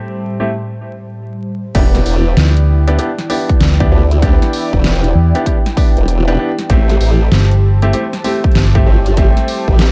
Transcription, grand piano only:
Already playing: A3 C4 E4 G4
0.40 A3 C4 E4 G4
1.75 B3 D4 E4 G4
2.87 B3 D4 E4 G4
2.99 B3 D4 E4 G4
3.30 B3 D4 E4 G4
3.80 B3 D4 E4 G4
3.92 B3 D4 E4 G4
4.22 B3 D4 E4 G4
5.35 B3 D4 E4 G4
5.46 B3 D4 E4 G4
5.77 B3 D4 E4 G4
6.28 B3 D4 E4 G4
6.39 B3 D4 E4 G4
6.70 A3 C4 E4 G4
7.82 A3 C4 E4 G4
7.94 A3 C4 E4 G4
8.24 A3 C4 E4 G4
8.75 A3 C4 E4 G4
8.86 A3 C4 E4 G4
9.17 A3 C4 E4 G4

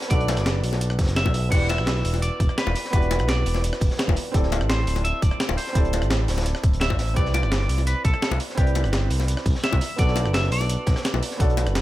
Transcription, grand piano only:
Already playing: B3 D4 F#4 A4 D5
0.08 B3 D4 F#4
0.12 A4 D5
1.49 B3 E4 F#4
1.53 G4 D5
2.90 B3 E4 F#4
2.94 G4 D5
4.32 C4 E4 G4
4.36 A4 D5
5.73 C4 E4 G4
5.77 A4 D5
7.14 C4 E4 G4
7.18 B4 D5
8.55 C4 E4 G4
8.59 B4 D5
9.96 B3 D4 F#4 A4
10.02 D5
11.37 B3 D4 F#4
11.41 A4 D5

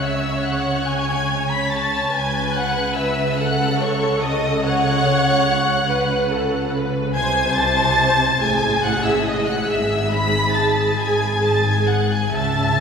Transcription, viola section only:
Already playing: C#5
2.12 B4
3.39 A4
4.64 C#5
5.88 B4
6.32 A4
6.75 B4
7.15 C5
8.41 G#4
9.67 G#4
12.33 E5

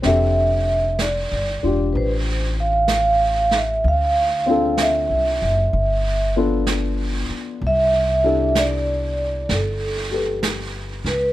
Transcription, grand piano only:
0.02 C4 D4 G4
0.07 A4
1.63 D4 F4 G4
4.46 C4 D4 F4
4.51 A4
6.36 B3 D4 F4 A4
8.24 D4 E4 G4 A4
10.11 G4 A4 B4

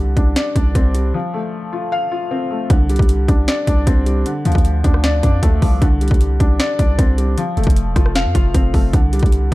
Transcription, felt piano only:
Already playing: D3 G3
0.17 D4
0.36 D5
0.56 D4
0.75 C4
0.95 G3
1.14 F3
1.34 A3
1.73 F4
1.92 F5
2.12 F4
2.31 C4
2.50 A3
2.70 D3
2.90 G3
3.29 D4
3.48 D5
3.67 D4
3.87 C4
4.06 G3
4.26 D3
4.45 F3
4.84 D4
5.04 D5
5.23 D4
5.43 A3
5.62 F3
5.82 D3
6.01 G3
6.40 D4
6.60 D5
6.79 D4
6.99 C4
7.18 G3
7.38 F3
7.57 A3
7.96 F4
8.16 F5
8.35 F4
8.55 C4
8.74 A3
8.93 D3
9.13 G3

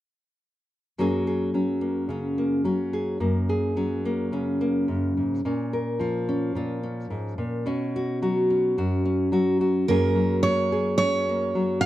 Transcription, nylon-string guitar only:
0.98 F#2 F#3 A#3 C#4 G#4
1.27 G#4
1.54 F#3 C#4
1.81 A#3
2.09 C#3 C#4
2.38 A#3
2.65 F#3 C#4
2.93 G#4
3.20 F#2 A#3
3.49 G#4
3.76 F#3 C#4
4.05 A#3
4.32 C#3 C#4
4.61 A#3
4.88 F#2
5.17 G#2
5.45 A#2 C#4
5.73 A#4
5.99 F3 F4
6.29 C#4
6.55 A#2 F4
6.83 C#4
7.10 G#2
7.38 A#2
7.66 B2 C#4
7.96 F#4
8.22 F#3 F#4
8.50 C#4
8.78 F#2 F#4
9.05 C#4
9.32 F#3 F#4
9.61 F#4
9.88 F#2 F#3 A#3 C#4 G#4
10.15 F#3
10.45 A#3
10.72 G#4
11.00 C#4
11.29 A#3
11.55 F#3

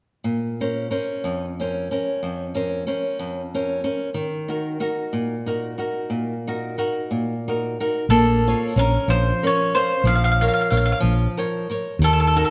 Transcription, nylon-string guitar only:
0.24 A#2
0.61 C#4 A#4 C5
0.91 C#4 A#4 C5
1.24 F2
1.60 C#4 A#4 C5
1.91 C#4 A#4 C5
2.23 F2
2.55 C#4 A#4 C5
2.87 C#4 A#4 C5
3.19 F2
3.54 C#4 A#4 C5
3.84 C#4 A#4 C5
4.14 D#3
4.48 D#4 F#4 A#4
4.80 D#4 F#4 A#4
5.13 A#2
5.46 D#4 F#4 A#4
5.78 D#4 F#4 A#4
6.10 A#2
6.47 D#4 F#4 A#4
6.78 D#4 F#4 A#4
7.11 A#2
7.48 D#4 F#4 A#4
7.80 D#4 F#4 A#4
8.10 A#3
8.47 F4 C5 C#5
8.76 C#4 A#4 C5
9.08 F3
9.43 C#4 A#4
9.75 A#4 C5 F5
10.05 F3
10.42 A#4 C5 C#5
10.71 A#4 C5 C#5
11.00 F3
11.37 A#4 C5 C#5
11.70 A#4 C5 C#5
12.02 D#3
12.36 D#4 F#4 A#4

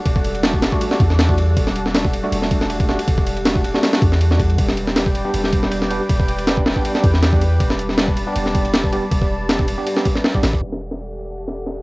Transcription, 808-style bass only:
0.06 E1
1.00 E2
1.57 E1
2.32 E1
3.08 E1
4.02 E2
4.58 E1
5.34 E1
6.09 E1
7.04 E2
7.60 E1
8.36 E1
9.11 E1
10.43 A1
10.53 F#1
10.62 E1

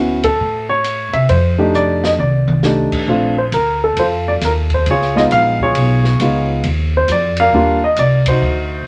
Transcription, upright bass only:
Already playing: D2
0.40 A2
1.13 C3
1.29 F2
2.18 C2
2.92 muted upright bass stroke
3.07 A#1
3.52 D2
3.97 F2
4.41 D#2
4.86 C#2
5.31 A#1
5.75 B1
6.20 C#2
6.64 D#2
7.08 F2
7.52 D#2
7.97 C2
8.42 D2

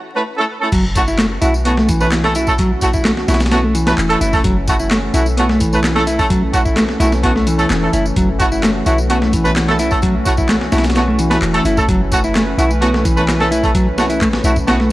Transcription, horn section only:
0.14 A3 C#4 E4 B4
0.37 A3 C#4 E4 A4
0.60 A3 C#4 E4 A4
0.95 A3 C#4 E4 F#4
1.42 A3 C#4 E4 F#4
1.65 A3 C#4 E4 F#4
2.01 A3 C#4 E4 B4
2.24 A3 C#4 E4 A4
2.47 A3 C#4 E4 A4
2.82 A3 C#4 E4 F#4
3.29 A3 C#4 E4 F#4
3.52 A3 C#4 E4 F#4
3.87 A3 C#4 E4 B4
4.10 A3 C#4 E4 A4
4.33 A3 C#4 E4 A4
4.68 A3 C#4 E4 F#4
5.15 A3 C#4 E4 F#4
5.38 A3 C#4 E4 F#4
5.73 A3 C#4 E4 B4
5.96 A3 C#4 E4 A4
6.19 A3 C#4 E4 A4
6.53 A3 C#4 E4 F#4
7.00 A3 C#4 E4 F#4
7.23 A3 C#4 E4 F#4
7.58 A3 C#4 E4 A4
7.82 A3 C#4 E4 A4
8.40 A3 C#4 E4 F#4
8.86 A3 C#4 E4 F#4
9.10 A3 C#4 E4 F#4
9.45 A3 C#4 E4 B4
9.68 A3 C#4 E4 A4
9.91 A3 C#4 E4 A4
10.25 A3 C#4 E4 F#4
10.72 A3 C#4 E4 F#4
10.95 A3 C#4 E4 F#4
11.31 A3 C#4 E4 B4
11.54 A3 C#4 E4 A4
11.77 A3 C#4 E4 A4
12.12 A3 C#4 E4 F#4
12.58 A3 C#4 E4 F#4
12.82 A3 C#4 E4 F#4
13.17 A3 C#4 E4 B4
13.40 A3 C#4 E4 A4
13.63 A3 C#4 E4 A4
13.98 A3 C#4 E4 F#4
14.44 A3 C#4 E4 F#4
14.68 A3 C#4 E4 F#4

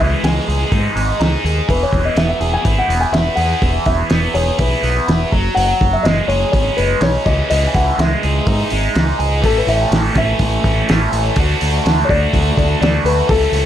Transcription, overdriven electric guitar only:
Already playing: E3 G#3 G#4
0.23 G#3
0.48 G#4
0.71 D#4
0.95 G#3
1.20 D#4
1.45 G#4
1.68 E3
2.17 B3
2.41 G#4
2.64 E4
2.88 B3
3.12 E4
3.37 G#4
3.62 E3
4.11 B3
4.34 G#4
4.59 E4
4.83 B3
5.08 E4
5.32 F#3
5.56 F#3
6.05 G#3
6.29 G#4
6.52 C#4
6.77 G#3
7.01 C#4
7.25 E3
7.51 E3
7.99 G#3
8.23 G#4
8.47 D#4
8.71 G#3
8.95 D#4
9.20 G#4
9.42 E3 A3 C#4
10.16 E3 A3 C#4
10.88 E3 A3 C#4
11.36 A3 D4 F#4
12.08 D4 F#4
12.12 A3
12.80 A3 D4 F#4
13.27 E3 A3 C#4 A4

